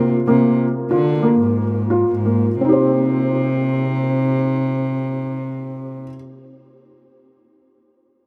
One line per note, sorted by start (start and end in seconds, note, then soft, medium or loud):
0.00 0.15 A#3 soft
0.27 0.55 C3 medium
0.27 0.64 A#3 medium
0.91 1.35 D3 medium
0.91 1.09 F4 medium
1.22 1.61 A#3 medium
1.40 2.01 G#2 medium
1.90 2.10 F4 medium
2.08 2.56 G#2 medium
2.25 2.46 A#3 soft
2.61 6.02 C3 medium
2.61 6.02 C4 soft
2.61 6.05 D#4 soft
2.69 6.09 G4 soft
2.69 6.13 C5 soft